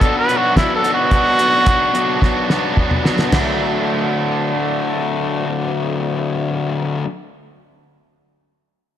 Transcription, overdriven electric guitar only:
0.01 B2 F#3 B3 D4 F#4
0.28 B2 F#3 B3 D4 F#4
0.56 B2 F#3 B3 D4 F#4
0.84 B2 F#3 B3 D4 F#4
1.11 B2 F#3 B3 D4 F#4
1.38 B2 F#3 B3 D4 F#4
1.66 B2 F#3 B3 D4 F#4
1.94 B2 F#3 B3 D4 F#4
2.21 B2 F#3 B3 D4 F#4
2.50 B2 F#3 B3 D4 F#4
2.77 B2 F#3 B3 D4 F#4
3.04 B2 F#3 B3 D4 F#4
3.30 D3 F#3 A3 D4

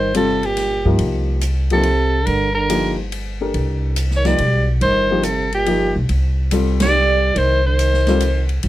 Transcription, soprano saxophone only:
Already playing: C5
0.17 A4
0.46 G4
1.73 A4
2.26 A#4
2.55 A#4
4.17 C#5
4.27 D5
4.82 C5
5.24 A4
5.54 G4
6.82 D5
7.38 C5
7.66 C5

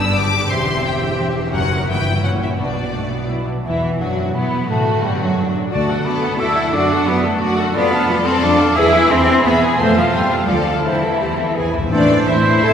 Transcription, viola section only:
Already playing: B3 D4
0.50 C4 G4
1.53 C#4 F#4
1.88 B3 E4
2.24 C#4
2.60 B3 D4
2.95 A3
3.12 B3
3.29 E4
3.47 D4
3.65 E3
4.01 F#3
4.36 B3
4.70 A3
5.04 G3
5.21 F#3
5.73 F#4 D5
5.89 A4 F#5
6.05 F#4 D5
6.22 A4 F#5
6.39 F#4 D5
6.56 A4 F#5
6.73 F#4 D5
6.90 A4 F#5
7.06 F#4 D5
7.23 A4 F#5
7.41 F#4 D5
7.58 A4 F#5
7.75 F4 D5
7.92 A4 F5
8.08 F4 D5
8.24 A4 F5
8.41 F4 D5
8.57 A4 F5
8.75 G#4 E5
8.92 B4 G#5
9.09 G#4 E5
9.27 B4 G#5
9.44 G#4 E5
9.62 B4 G#5
9.79 C5 E5
9.97 A4 F5
10.14 C5 E5
10.31 A4 F5
10.49 F4 D5
10.67 A4 F5
10.85 E4 C5
11.03 A4
11.20 G4
11.37 A4
11.55 G#4
11.73 E4
11.91 A3 C4
12.09 E3 A3
12.28 A3 C4
12.46 E3 A3
12.64 A3 C4

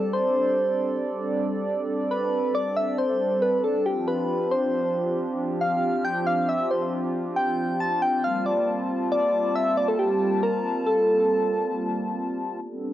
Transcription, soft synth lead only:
Already playing: A4
0.13 C5
2.11 B4
2.55 D5
2.76 E5
2.98 C5
3.42 B4
3.64 A4
3.86 G4
4.08 B4
4.51 C5
5.61 F5
6.05 G5
6.27 F5
6.49 E5
6.71 C5
7.36 G5
7.80 A5
8.02 G5
8.24 F5
8.46 D5
9.12 D5
9.56 E5
9.77 D5
9.88 A4
9.99 G4
10.43 A#4
10.87 A4

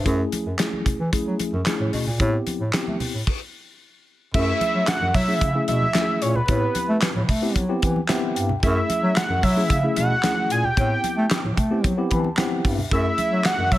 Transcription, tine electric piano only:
Already playing: C5 E5
0.05 A3 C#4 E4 G#4
0.58 A3 C#4 E4 G#4
1.12 A3 C#4 E4 G#4
1.66 A3 C#4 E4 G#4
2.20 B3 C4 E4 G4
2.73 B3 C4 E4 G4
4.34 A3 C#4 E4 G#4
5.28 A3 C#4 E4 G#4
5.55 A3 C#4 E4 G#4
5.94 A3 C#4 E4 F#4
6.02 G#4
6.48 B3 C4 E4 G4
7.42 B3 C4 E4 G4
7.69 B3 C4 E4 G4
8.09 B3 C4 E4 G4 E5
8.36 G5
8.62 A3 C#4 E4 G#4
9.56 A3 C#4 E4 G#4
9.83 A3 C#4 E4 G#4
10.23 A3 C#4 E4 G#4
10.77 B3 C4 E4 G4
11.70 B3 C4 E4 G4
11.97 B3 C4 E4 G4
12.11 B5
12.19 A5
12.37 B3 C4 E4 G4 F#5
12.73 E5
12.91 A3 C#4 E4 G#4

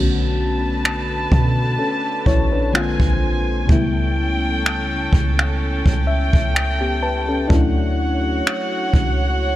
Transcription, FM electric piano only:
Already playing: D3 A3 B3 C#4 F#4
1.79 C#4 A4
2.27 E4 C#5
2.52 D4 B4
2.73 D3 G#3 A#3 C4 F4
3.67 C#3 G3 A3
3.71 B3 E4
6.07 E5
6.55 G5
6.81 B3 G4
7.03 B4 A5
7.28 C#4 A4
7.48 F#3 A3 D4
7.52 C#4 E4

